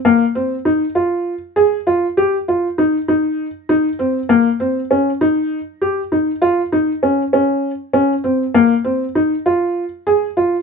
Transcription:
\new Staff \with { instrumentName = "Felt piano" } { \time 7/8 \key bes \dorian \tempo 4 = 99 bes8 c'8 ees'8 f'4 aes'8 f'8 | g'8 f'8 ees'8 ees'4 ees'8 c'8 | bes8 c'8 des'8 ees'4 g'8 ees'8 | f'8 ees'8 des'8 des'4 des'8 c'8 |
bes8 c'8 ees'8 f'4 aes'8 f'8 | }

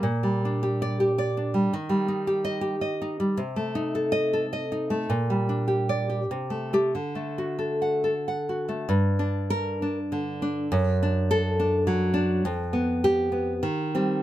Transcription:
\new Staff \with { instrumentName = "Nylon-string guitar" } { \time 3/4 \key g \minor \tempo 4 = 103 << { r4 \tuplet 3/2 { r8 d''4 } r4 | r4 \tuplet 3/2 { r8 ees''4 } r4 | r4 \tuplet 3/2 { r8 ees''4 } r4 | r4 \tuplet 3/2 { r8 d''4 r4 g'8 } |
r4 \tuplet 3/2 { r8 fis''4 } r4 | r4 bes'4 r4 | r4 a'4 r4 | r4 g'4 r8 c'8 | } \\ { \tuplet 3/2 { bes,8 g8 d'8 g'4 g'8 d''8 d'8 g8 } | \tuplet 3/2 { ees8 g8 ees'8 g'4 g'8 ees''8 ees'8 g8 } | \tuplet 3/2 { c8 a8 ees'8 a'4 a'8 ees''8 ees'8 a8 } | \tuplet 3/2 { bes,8 g8 d'8 g'4 g'8 c8 a8 a8 } |
\tuplet 3/2 { d8 a8 fis'8 a'4 a'8 fis''8 fis'8 a8 } | g,8 d'4 d'8 d8 d'8 | fis,8 d'4 d'8 fis8 d'8 | f,8 b4 b8 ees8 g8 | } >> }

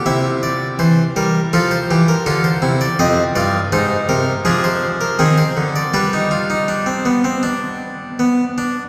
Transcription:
<<
  \new Staff \with { instrumentName = "Harpsichord" } { \time 4/4 \key f \mixolydian \tempo 4 = 81 << { e''8 d''8 c''8 bes'8 a'16 c''8 bes'16 a'16 c''8 d''16 | \key g \phrygian ees''8 d''8 c''8 bes'8 aes'16 c''8 bes'16 aes'16 c''8 d''16 | b'2.~ b'8 r8 | } \\ { e'2 f'8 g'8 f'8 e'8 | c'8 f'8 ees'4 d'4 c'4 | d'16 ees'16 f'16 ees'16 d'16 c'16 b16 c'16 d'4 b8 d'8 | } >> }
  \new Staff \with { instrumentName = "Harpsichord" } { \clef bass \time 4/4 \key f \mixolydian c4 e8 g8 f8 e8 d8 c8 | \key g \phrygian f,8 g,8 aes,8 c8 f4 ees8 d8 | g2.~ g8 r8 | }
>>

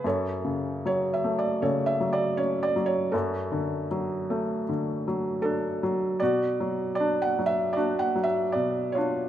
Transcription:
<<
  \new Staff \with { instrumentName = "Felt piano" } { \time 4/4 \key fis \minor \tempo 4 = 78 << { cis''4 \tuplet 3/2 { cis''8 e''8 d''8 cis''8 e''8 d''8 cis''8 d''8 cis''8 } | a'4 r2 a'4 | d''4 \tuplet 3/2 { d''8 fis''8 e''8 d''8 fis''8 e''8 } d''8 cis''8 | } \\ { a'2 a'2 | fis'2 r2 | fis'2 fis'4. eis'8 | } >> }
  \new Staff \with { instrumentName = "Felt piano" } { \clef bass \time 4/4 \key fis \minor fis,8 cis8 fis8 a8 cis8 fis8 cis'8 fis8 | fis,8 d8 fis8 a8 d8 fis8 d'8 fis8 | b,8 fis8 d'8 fis8 d'8 fis8 b,8 d'8 | }
>>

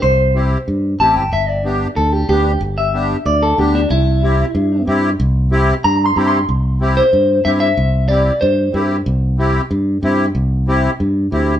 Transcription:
<<
  \new Staff \with { instrumentName = "Clean electric guitar" } { \time 4/4 \key c \major \tempo 4 = 186 c''4 r2 a''8 g''8 | e''8 d''4. a'8 g'8 g'4 | r8 e''4. d''8 a'8 g'8 d'8 | e'2. r4 |
r2 \tuplet 3/2 { bes''4 c'''8 bes''8 c'''4 } | r4. c''4. e''8 e''8~ | e''4 d''4 c''4. r8 | r1 |
r1 | }
  \new Staff \with { instrumentName = "Accordion" } { \time 4/4 \key c \major r4 <c' e' g'>8 r4. <c' e' g'>8 r8 | r4 <b d' g'>8 r4. <b d' g'>8 r8 | r4 <b d' g'>8 r4. <b d' g'>8 r8 | r4 <c' e' g'>8 r4. <c' e' g'>8 r8 |
r4 <c' e' g'>8 r4. <c' e' g'>8 r8 | r4 <c' e' g'>8 r4. <c' e' g'>8 r8 | r4 <c' e' g'>8 r4. <c' e' g'>8 r8 | r4 <c' e' g'>8 r4. <c' e' g'>8 r8 |
r4 <c' e' g'>8 r4. <c' e' g'>8 r8 | }
  \new Staff \with { instrumentName = "Fingered electric bass" } { \clef bass \time 4/4 \key c \major c,2 g,4 a,,8 g,,8 | g,,2 d,4 d,4 | g,,2 d,4 d,4 | c,2 g,4 g,4 |
c,2 g,4 g,4 | c,2 g,4 g,4 | c,2 g,4 g,4 | c,2 g,4 g,4 |
c,2 g,4 d,4 | }
>>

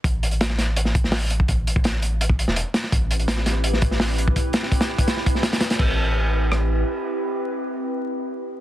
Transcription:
<<
  \new Staff \with { instrumentName = "Ambient pad" } { \time 4/4 \key a \minor \tempo 4 = 167 r1 | r1 | <c' e' g' b'>2. <c' e' g' b'>8 <c' e' g' b'>8 | <c' e' g' b'>2.~ <c' e' g' b'>8 <c' e' g' b'>8 |
<c' e' g' b'>1~ | <c' e' g' b'>1 | }
  \new Staff \with { instrumentName = "Sub bass" } { \clef bass \time 4/4 \key a \minor a,,1 | a,,2~ a,,8. e,,8 r8. | a,,1 | r1 |
a,,2. r4 | r1 | }
  \new DrumStaff \with { instrumentName = "Drums" } \drummode { \time 4/4 <hh bd>8 hh16 hh16 <hh sn>16 sn16 <hh sn>8 hh16 sn16 <hh bd>16 sn16 <hho sn>8 hh16 bd16 | <hh bd>8 hh16 bd16 <hh sn>8 hh8 hh16 bd16 hh16 sn16 hh8 <hh sn>16 sn16 | <hh bd>8 hh16 hh16 <hh sn>16 sn16 <hh sn>8 hh16 sn16 <hh bd>16 sn16 <hho sn>8 hh16 bd16 | <hh bd>8 <hh sn>16 sn16 <hh bd>16 <hh sn>8 <hh bd>16 <hh sn>16 sn16 <hh bd>16 sn16 <hh sn>16 <hh sn>16 <hh sn>16 <hh sn>16 |
<cymc bd>4 r4 ss4 r4 | r4 r4 r4 r4 | }
>>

